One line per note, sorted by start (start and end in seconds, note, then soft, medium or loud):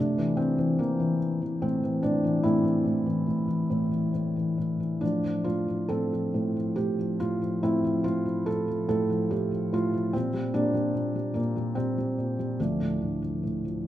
0.00 2.40 C3 medium
0.00 1.17 A3 medium
0.00 0.39 D4 medium
0.18 0.57 E3 medium
0.37 0.80 C4 medium
0.58 0.79 E3 soft
0.79 0.98 E3 soft
0.79 1.65 A#3 medium
1.00 1.40 E3 soft
1.42 1.82 E3 soft
1.62 2.03 A2 soft
1.62 2.00 C4 medium
1.83 2.23 E3 soft
2.03 2.43 A2 soft
2.03 2.45 D4 medium
2.24 2.63 E3 soft
2.43 2.84 A2 medium
2.43 4.10 A3 soft
2.43 4.11 C4 medium
2.43 4.10 E4 medium
2.65 3.05 E3 soft
2.85 3.25 A2 soft
3.06 3.46 E3 soft
3.27 3.69 A2 soft
3.48 3.90 E3 soft
3.70 4.12 A2 soft
3.91 4.35 E3 soft
4.14 4.56 A2 soft
4.36 4.79 E3 soft
4.58 5.00 A2 soft
4.80 5.02 E3 soft
5.01 5.44 A2 soft
5.01 5.22 F3 soft
5.01 5.47 D4 medium
5.24 5.67 F3 soft
5.44 5.89 A2 soft
5.44 5.86 F4 medium
5.68 6.12 F3 soft
5.89 6.33 A2 soft
5.89 7.17 C4 medium
5.89 7.17 F4 soft
5.89 6.73 A4 medium
6.13 6.55 F3 soft
6.34 6.76 A2 medium
6.56 6.98 F3 soft
6.76 7.19 A2 soft
6.76 7.17 G4 medium
6.99 7.40 F3 soft
7.20 7.61 A2 soft
7.20 7.60 F4 medium
7.42 7.83 F3 soft
7.63 8.04 A2 soft
7.63 8.85 C4 medium
7.63 8.02 E4 medium
7.84 8.24 F3 soft
8.04 8.45 A2 soft
8.04 8.48 F4 medium
8.26 8.66 F3 soft
8.46 8.87 A2 soft
8.46 8.87 A4 medium
8.68 9.08 F3 soft
8.88 9.30 A2 medium
8.88 9.32 A4 medium
9.10 9.50 F3 soft
9.31 9.71 A2 soft
9.31 9.74 G4 medium
9.52 9.92 F3 soft
9.73 10.12 A2 soft
9.73 10.15 F4 medium
9.94 10.13 F3 soft
10.13 10.53 A#2 soft
10.13 10.32 G3 soft
10.13 10.51 C4 medium
10.33 10.53 G3 soft
10.54 10.93 A#2 soft
10.54 10.73 G3 medium
10.54 11.33 A#3 medium
10.54 11.38 D4 medium
10.74 11.14 G3 soft
10.94 11.34 A#2 soft
11.15 11.55 G3 soft
11.34 11.75 A#2 medium
11.34 11.77 A#3 medium
11.56 11.75 G3 soft
11.75 12.17 A#2 soft
11.75 11.96 G3 soft
11.75 12.61 C4 medium
11.98 12.37 G3 soft
12.18 12.58 A#2 soft
12.39 12.58 G3 soft
12.60 13.87 D2 soft
12.60 13.21 F3 soft
12.60 13.87 A3 soft
12.60 13.87 D4 medium
12.80 13.42 A2 soft
13.01 13.87 D3 soft
13.22 13.63 F3 soft
13.43 13.86 A2 soft
13.65 13.87 F3 soft